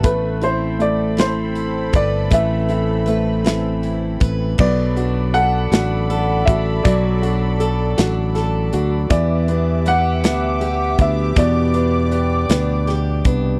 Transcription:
<<
  \new Staff \with { instrumentName = "Grand piano" } { \time 6/8 \key b \phrygian \tempo 4. = 53 b'8 c''8 d''8 c''4 d''8 | e''2 r4 | d''4 fis''4. e''8 | d''4. r4. |
d''4 fis''4. e''8 | d''4. r4. | }
  \new Staff \with { instrumentName = "String section" } { \time 6/8 \key b \phrygian << { <a' b''>2.~ | <a' b''>2. | <a' b''>2.~ | <a' b''>2. |
<g' d'''>2.~ | <g' d'''>2. | } \\ { c'2.~ | c'2. | d''2.~ | d''2. |
e''2. | d''2. | } >> }
  \new Staff \with { instrumentName = "Grand piano" } { \time 6/8 \key b \phrygian a8 e'8 a8 e'4. | e8 e'8 a8 e'4. | b8 fis'8 a'8 fis'8 a'8 fis'8 | fis8 fis'8 a'8 fis'8 a'8 fis'8 |
e8 b8 b'8 b8 g'8 b8 | b,8 b8 b'8 b8 g'8 b8 | }
  \new Staff \with { instrumentName = "Steel-string acoustic guitar" } { \time 6/8 \key b \phrygian a8 c'4 c'8 e'8 b'8 | a8 c'8 b'8 c'8 e'8 b'8 | fis8 d'8 a'8 d'8 a'8 d'8 | fis8 d'8 a'8 d'8 a'8 d'8 |
b8 d'8 g'8 d'8 g'8 d'8 | b8 d'8 g'8 d'8 g'8 d'8 | }
  \new Staff \with { instrumentName = "Fingered electric bass" } { \clef bass \time 6/8 \key b \phrygian a,,2~ a,,8 g,,8 | a,,2~ a,,8 a,,8 | b,,4. a,,4 a,,8 | b,,4. a,,4 d,8 |
e,4. d,4 d,8 | e,4. d,4 c,8 | }
  \new DrumStaff \with { instrumentName = "Drums" } \drummode { \time 6/8 <hh bd>8 hh8 hh8 <hh sn>8 hh8 <hh bd>8 | <hh bd>8 hh8 hh8 <hh sn>8 hh8 <hh bd>8 | <cymc bd>8 hh8 hh8 <hh sn>8 hh8 <hh bd>8 | <hh bd>8 hh8 hh8 <hh sn>8 <hh sn>8 hh8 |
<hh bd>8 hh8 hh8 <hh sn>8 hh8 <hh bd>8 | <hh bd>8 hh8 hh8 <hh sn>8 <hh sn>8 <hh bd>8 | }
>>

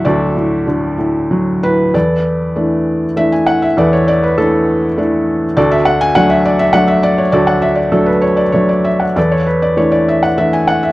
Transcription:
<<
  \new Staff \with { instrumentName = "Felt piano" } { \time 3/4 \key e \dorian \tempo 4 = 99 << { d''2~ d''8 b'8 | d''2 e''16 gis''16 fis''16 e''16 | d''16 cis''16 d''16 b'16 a'2 | d''16 e''16 fis''16 gis''16 fis''16 e''16 d''16 e''16 fis''16 e''16 d''16 cis''16 |
d''16 fis''16 e''16 d''16 a'16 b'16 cis''16 d''16 cis''16 d''16 e''16 fis''16 | d''16 cis''16 b'16 d''16 cis''16 d''16 e''16 fis''16 e''16 gis''16 fis''16 e''16 | } \\ { <fis' a'>2~ <fis' a'>8 r8 | <a' b'>2 r4 | <a' b'>4 d'2 | <fis' a'>4. r4. |
<fis' a'>4. r4. | <a' b'>4. r4. | } >> }
  \new Staff \with { instrumentName = "Felt piano" } { \clef bass \time 3/4 \key e \dorian <d, a, fis>8 a,8 d8 a,8 fis8 a,8 | e,4 <e a d'>4 <e a d'>4 | e,4 <e a>4 <e a d'>4 | d,4 <fis a d'>4 <fis a d'>4 |
d,4 <fis a d'>4 <fis a d'>4 | e,4 <e a d'>4 <e a d'>4 | }
>>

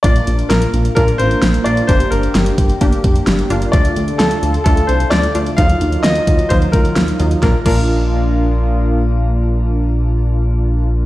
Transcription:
<<
  \new Staff \with { instrumentName = "Grand piano" } { \time 4/4 \key bes \major \tempo 4 = 130 d''4 bes'4 bes'8 c''4 d''8 | c''8 bes'4 r2 r8 | d''4 a'4 a'8 c''8 d''4 | f''4 ees''4 c''8 bes'4 r8 |
bes'8 bes'2.~ bes'8~ | bes'1 | }
  \new Staff \with { instrumentName = "Analog polysynth" } { \time 4/4 \key bes \major <bes d' f'>2 <bes d' f'>4. <bes d' f'>8 | <bes d' g'>2 <bes d' g'>4. <bes d' f'>8 | <a d' f'>2 <a d' f'>4. <a d' f'>8 | <ges ees' f'>2 <ges ees' f'>4. <ges ees' f'>8 |
<bes d' f'>8 <bes d' f'>2.~ <bes d' f'>8~ | <bes d' f'>1 | }
  \new Staff \with { instrumentName = "Analog synth pad" } { \time 4/4 \key bes \major << { f'1 | g'1 | <d a'>1 | <ees ges>1 |
<bes, bes d' f'>1~ | <bes, bes d' f'>1 | } \\ { <bes d'>1~ | <bes d'>1 | f'1 | <ees' f'>1 |
r1 | r1 | } >> }
  \new Staff \with { instrumentName = "Analog synth bass" } { \clef bass \time 4/4 \key bes \major bes,,8 bes,,8 bes,,8 bes,,8 bes,,8 a,,8 bes,,8 bes,,8 | g,,8 g,,8 g,,8 g,,8 g,,8 f,,8 g,,8 g,,8 | d,8 d,8 d,8 d,8 d,8 c,8 d,8 d,8 | ees,8 ees,8 ees,8 ees,8 ees,8 d,8 ees,8 ees,8 |
bes,,8 bes,,2.~ bes,,8~ | bes,,1 | }
  \new DrumStaff \with { instrumentName = "Drums" } \drummode { \time 4/4 <hh bd>16 hh16 hh16 hh16 <hh sn>16 hh16 hh16 hh16 <hh bd>16 hh16 hh16 hh16 <hh sn>16 hh16 hh16 hh16 | <hh bd>16 hh16 hh16 hh16 <hh sn>16 hh16 <hh bd>16 hh16 <hh bd>16 hh16 <hh bd>16 hh16 <hh sn>16 hh16 hh16 hh16 | <hh bd>16 hh16 hh16 hh16 <hh sn>16 hh16 hh16 hh16 <hh bd>16 hh16 hh16 hh16 <hh sn>16 hh16 hh16 hh16 | <hh bd>16 hh16 hh16 hh16 <hh sn>16 hh16 <hh bd>16 hh16 <hh bd>16 hh16 <hh bd>16 hh16 <hh sn>16 hh16 hh16 hh16 |
<bd sn>8 <cymc bd>8 r4 r4 r4 | r4 r4 r4 r4 | }
>>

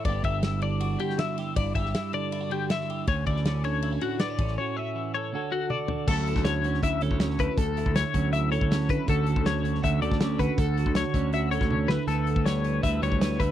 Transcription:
<<
  \new Staff \with { instrumentName = "Clean electric guitar" } { \time 4/4 \key b \minor \tempo 4 = 160 d''8 e''4 d''4 g'8 e''4 | d''8 e''4 d''4 g'8 e''4 | cis''8 d''4 cis''4 fis'8 d''4 | cis''8 e''4 cis''4 fis'8 d''4 |
a'4 cis''4 e''8 cis''4 b'8 | a'4 cis''4 e''8 cis''4 b'8 | a'4 cis''4 e''8 d''4 b'8 | a'4 cis''4 e''8 cis''4 b'8 |
a'4 cis''4 e''8 cis''4 b'8 | }
  \new Staff \with { instrumentName = "Clean electric guitar" } { \time 4/4 \key b \minor << { <d b e' g'>8 g'8 e'4 fis'4 e'8 g'8 | e'8 g'8 e'4 e'16 fis'8. e'8 g'8 | cis'8 e'8 cis'4 e'16 fis'8. b16 cis'16 cis'8 | fis'8 cis'4 a'8 <d fis' a'>8 a'8 fis'4 |
<fis cis' e' a'>8 e'4 cis'8 e'8 a'8 cis'8 e'8 | a'8 e'4 cis'8 e'8 a'8 cis'8 e'8 | <d cis' fis' a'>8 fis'4 cis'8 fis'8 a'8 cis'8 fis'8 | a'8 fis'4 cis'8 fis'8 a'8 cis'8 e'8 |
b4 g8 b8 e'8 g8 b8 e'8 | } \\ { g,4. d4 d4. | g,4. d4 d4. | d,4. d4 a,4 a,8~ | a,4 e4 d,4. d8 |
d,4. fis4 d,4. | d,4. fis4 d,4. | d,4. d4 d,4. | d,4. d4 d,4 d,8~ |
d,4 d4 d,4. d,8 | } >> }
  \new Staff \with { instrumentName = "Picked electric bass" } { \clef bass \time 4/4 \key b \minor g,,8 g,,2 r4. | g,,8 g,,8 r2. | d,8 d,2 r4 a,,8 | r1 |
d,8. d,4~ d,16 d,8 d,16 d,8. d,16 r16 | d,8. d,8 r16 d,4~ d,16 d,8. d16 r16 | d,8. d,4~ d,16 d,8 d,16 d,8. d,16 r16 | d,8. d,8 r16 d,4~ d,16 d,8. d,16 r16 |
d,8. d,4~ d,16 d,8 d,16 d,8. d,16 r16 | }
  \new DrumStaff \with { instrumentName = "Drums" } \drummode { \time 4/4 <bd cymr>8 <bd cymr>8 <cymr sn>8 cymr8 cymr8 cymr16 sn16 <cymr sn>8 <cymr sn>8 | <bd cymr>8 <bd cymr>16 sn16 <cymr sn>8 cymr8 cymr8 cymr8 <cymr sn>16 sn16 cymr8 | <bd cymr>8 <bd cymr>16 sn16 <cymr sn>8 cymr8 cymr8 cymr8 <cymr sn>8 <bd cymr>16 sn16 | r4 r4 r4 tommh8 tomfh8 |
<cymc bd>16 sn16 hh16 <bd sn>16 <hh sn>8 hh16 sn16 <hh bd>8 hh16 bd16 <hh sn>16 sn16 <hh bd>8 | <hh bd>8 hh16 bd16 <hh sn>8 <hh bd>8 hh8 hh16 bd16 <hh sn>16 sn16 <hh bd>8 | <hh bd>8 hh16 bd16 <hh sn>8 hh16 sn16 <hh bd>8 hh16 <bd sn>16 <hh sn>8 <hh bd>8 | <hh bd>8 hh16 bd16 <hh sn>8 <hh bd>8 hh8 hh16 <bd sn>16 tommh8 sn8 |
hh8 hh16 bd16 <hh sn>8 hh8 <hh bd>8 hh16 bd16 <hh sn>16 sn16 <hh bd>8 | }
>>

